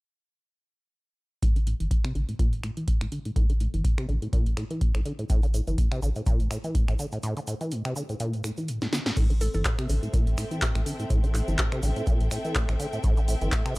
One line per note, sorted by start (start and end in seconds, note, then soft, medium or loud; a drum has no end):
1.43 1.74 A1 medium
1.43 1.54 A2 loud
1.43 kick loud
1.43 closed hi-hat medium
1.56 1.60 D3 medium
1.56 closed hi-hat soft
1.67 1.74 A2 medium
1.67 closed hi-hat medium
1.80 1.88 G1 medium
1.80 1.92 E3 medium
1.80 closed hi-hat soft
1.91 2.02 A2 medium
1.91 kick medium
1.91 closed hi-hat medium
2.04 2.13 C3 medium
2.04 finger snap medium
2.04 closed hi-hat soft
2.15 2.25 A1 medium
2.15 2.23 D3 medium
2.15 closed hi-hat soft
2.29 2.35 A2 medium
2.29 closed hi-hat soft
2.39 2.54 A#2 medium
2.39 kick loud
2.39 closed hi-hat medium
2.53 2.60 A1 medium
2.53 2.62 A2 loud
2.53 closed hi-hat soft
2.63 2.71 A2 medium
2.63 finger snap medium
2.63 closed hi-hat medium
2.77 2.89 E3 medium
2.77 closed hi-hat soft
2.88 2.99 A2 medium
2.88 kick medium
2.88 closed hi-hat medium
3.01 3.09 A1 medium
3.01 3.07 A2 medium
3.01 finger snap medium
3.01 closed hi-hat soft
3.12 3.19 D3 medium
3.12 closed hi-hat medium
3.25 3.31 A2 medium
3.25 closed hi-hat soft
3.36 3.68 A1 medium
3.36 3.47 A2 medium
3.36 kick loud
3.36 closed hi-hat medium
3.50 3.53 D3 medium
3.50 closed hi-hat soft
3.60 3.68 A2 medium
3.60 closed hi-hat medium
3.74 3.81 G1 medium
3.74 3.86 E3 medium
3.74 closed hi-hat soft
3.84 3.96 A2 medium
3.84 kick loud
3.84 closed hi-hat medium
3.98 4.07 C3 medium
3.98 finger snap medium
3.98 closed hi-hat soft
4.09 4.18 A1 medium
4.09 4.16 D3 medium
4.09 closed hi-hat soft
4.22 4.28 A2 medium
4.22 closed hi-hat soft
4.33 4.48 A#2 loud
4.33 kick loud
4.33 closed hi-hat medium
4.46 4.54 A1 medium
4.46 4.55 A2 medium
4.46 closed hi-hat soft
4.57 4.64 A2 medium
4.57 finger snap medium
4.57 closed hi-hat medium
4.71 4.83 E3 medium
4.71 closed hi-hat soft
4.81 4.92 A2 medium
4.81 kick loud
4.81 closed hi-hat medium
4.95 5.02 A1 medium
4.95 5.01 A2 medium
4.95 finger snap medium
4.95 closed hi-hat soft
5.05 5.13 D3 medium
5.05 closed hi-hat medium
5.19 5.25 A2 medium
5.19 closed hi-hat soft
5.30 5.61 A1 loud
5.30 5.41 A2 loud
5.30 kick loud
5.30 closed hi-hat medium
5.30 shaker medium
5.43 5.47 D3 medium
5.43 closed hi-hat soft
5.43 shaker soft
5.54 5.61 A2 medium
5.54 closed hi-hat medium
5.54 shaker medium
5.67 5.75 G1 medium
5.67 5.80 E3 medium
5.67 closed hi-hat soft
5.67 shaker soft
5.78 5.89 A2 medium
5.78 kick loud
5.78 closed hi-hat medium
5.78 shaker soft
5.92 6.00 C3 medium
5.92 finger snap medium
5.92 closed hi-hat soft
5.92 shaker soft
6.02 6.12 A1 medium
6.02 6.10 D3 medium
6.02 closed hi-hat soft
6.02 shaker medium
6.16 6.22 A2 medium
6.16 closed hi-hat soft
6.16 shaker soft
6.26 6.41 A#2 medium
6.26 kick loud
6.26 closed hi-hat medium
6.26 shaker medium
6.40 6.48 A1 loud
6.40 6.49 A2 loud
6.40 closed hi-hat soft
6.40 shaker soft
6.51 6.58 A2 medium
6.51 finger snap medium
6.51 closed hi-hat medium
6.51 shaker loud
6.64 6.76 E3 medium
6.64 closed hi-hat soft
6.64 shaker soft
6.75 6.86 A2 medium
6.75 kick loud
6.75 closed hi-hat medium
6.75 shaker medium
6.88 6.96 A1 loud
6.88 6.94 A2 medium
6.88 finger snap medium
6.88 closed hi-hat soft
6.88 shaker soft
6.99 7.06 D3 medium
6.99 closed hi-hat medium
6.99 shaker medium
7.12 7.18 A2 medium
7.12 closed hi-hat soft
7.12 shaker soft
7.23 7.34 A2 medium
7.23 closed hi-hat medium
7.23 shaker medium
7.37 7.40 D3 medium
7.37 closed hi-hat soft
7.37 shaker soft
7.47 7.55 A2 medium
7.47 closed hi-hat medium
7.47 shaker medium
7.61 7.73 E3 medium
7.61 closed hi-hat soft
7.61 shaker soft
7.71 7.83 A2 medium
7.71 closed hi-hat medium
7.71 shaker soft
7.85 7.94 C3 loud
7.85 finger snap medium
7.85 closed hi-hat soft
7.85 shaker soft
7.96 8.03 D3 medium
7.96 closed hi-hat soft
7.96 shaker medium
8.09 8.15 A2 medium
8.09 closed hi-hat soft
8.09 shaker soft
8.20 8.35 A#2 loud
8.20 closed hi-hat medium
8.20 shaker soft
8.33 8.42 A2 loud
8.33 closed hi-hat soft
8.33 shaker soft
8.44 8.52 A2 medium
8.44 finger snap medium
8.44 closed hi-hat medium
8.44 shaker medium
8.57 8.70 E3 medium
8.57 closed hi-hat soft
8.57 shaker soft
8.68 8.80 A2 medium
8.68 closed hi-hat medium
8.68 shaker soft
8.82 8.88 A2 medium
8.82 snare soft
8.82 closed hi-hat soft
8.82 shaker soft
8.93 9.00 D3 medium
8.93 snare medium
8.93 closed hi-hat medium
8.93 shaker medium
9.06 9.12 A2 medium
9.06 snare medium
9.06 closed hi-hat soft
9.06 shaker soft
9.17 9.48 A1 medium
9.17 9.28 A2 loud
9.17 13.79 C4 medium
9.17 kick loud
9.17 closed hi-hat medium
9.17 crash medium
9.17 shaker medium
9.30 9.34 D3 medium
9.30 closed hi-hat soft
9.30 shaker soft
9.41 9.48 A2 medium
9.41 9.50 A4 medium
9.41 open hi-hat loud
9.41 shaker medium
9.54 9.62 G1 medium
9.54 9.66 E3 medium
9.54 9.61 A4 medium
9.54 closed hi-hat soft
9.54 shaker soft
9.58 13.79 A4 medium
9.65 9.76 A2 medium
9.65 kick loud
9.65 clap loud
9.65 closed hi-hat medium
9.65 shaker soft
9.78 9.87 C3 medium
9.78 13.79 E5 medium
9.78 finger snap medium
9.78 closed hi-hat soft
9.78 shaker soft
9.89 9.99 A1 medium
9.89 9.97 D3 medium
9.89 open hi-hat loud
9.89 shaker medium
10.03 10.09 A2 medium
10.03 closed hi-hat soft
10.03 shaker soft
10.13 10.28 A#2 loud
10.13 kick loud
10.13 closed hi-hat medium
10.13 shaker medium
10.27 10.35 A1 loud
10.27 10.36 A2 loud
10.27 13.79 G5 medium
10.27 closed hi-hat soft
10.27 shaker soft
10.38 10.45 A2 medium
10.38 finger snap medium
10.38 open hi-hat loud
10.38 shaker medium
10.51 10.63 E3 medium
10.51 closed hi-hat soft
10.51 shaker soft
10.62 10.73 A2 medium
10.62 kick loud
10.62 clap loud
10.62 closed hi-hat medium
10.62 shaker medium
10.75 10.83 A1 medium
10.75 10.81 A2 medium
10.75 finger snap medium
10.75 closed hi-hat soft
10.75 shaker soft
10.86 10.93 D3 medium
10.86 open hi-hat loud
10.86 shaker medium
10.99 11.05 A2 medium
10.99 closed hi-hat soft
10.99 shaker soft
11.10 11.42 A1 loud
11.10 11.21 A2 loud
11.10 kick loud
11.10 closed hi-hat medium
11.10 shaker medium
11.24 11.27 D3 medium
11.24 closed hi-hat soft
11.24 shaker soft
11.34 11.42 A2 medium
11.34 clap soft
11.34 open hi-hat loud
11.34 shaker medium
11.48 11.56 G1 loud
11.48 11.60 E3 medium
11.48 closed hi-hat soft
11.48 shaker soft
11.58 11.70 A2 medium
11.58 kick loud
11.58 clap loud
11.58 closed hi-hat medium
11.58 shaker soft
11.72 11.81 C3 medium
11.72 finger snap medium
11.72 closed hi-hat soft
11.72 shaker soft
11.83 11.92 A1 loud
11.83 11.90 D3 medium
11.83 open hi-hat loud
11.83 shaker medium
11.96 12.02 A2 medium
11.96 closed hi-hat soft
11.96 shaker soft
12.07 12.22 A#2 loud
12.07 kick loud
12.07 closed hi-hat medium
12.07 shaker soft
12.20 12.28 A1 loud
12.20 12.29 A2 loud
12.20 closed hi-hat soft
12.20 shaker soft
12.31 12.39 A2 medium
12.31 finger snap medium
12.31 open hi-hat loud
12.31 shaker medium
12.45 12.57 E3 medium
12.45 closed hi-hat soft
12.45 shaker soft
12.55 12.67 A2 medium
12.55 kick loud
12.55 clap loud
12.55 closed hi-hat medium
12.55 shaker medium
12.69 12.77 A1 loud
12.69 12.75 A2 medium
12.69 finger snap medium
12.69 closed hi-hat soft
12.69 shaker soft
12.80 12.87 D3 medium
12.80 open hi-hat loud
12.80 shaker medium
12.93 12.99 A2 medium
12.93 closed hi-hat soft
12.93 shaker soft
13.04 13.35 A1 loud
13.04 13.15 A2 loud
13.04 kick loud
13.04 closed hi-hat medium
13.04 shaker medium
13.17 13.21 D3 medium
13.17 closed hi-hat soft
13.17 shaker soft
13.28 13.35 A2 medium
13.28 open hi-hat loud
13.28 shaker medium
13.41 13.49 G1 medium
13.41 13.54 E3 medium
13.41 closed hi-hat soft
13.41 shaker soft
13.52 13.63 A2 medium
13.52 kick loud
13.52 clap loud
13.52 closed hi-hat medium
13.52 shaker medium
13.66 13.74 C3 loud
13.66 finger snap medium
13.66 closed hi-hat soft
13.66 shaker soft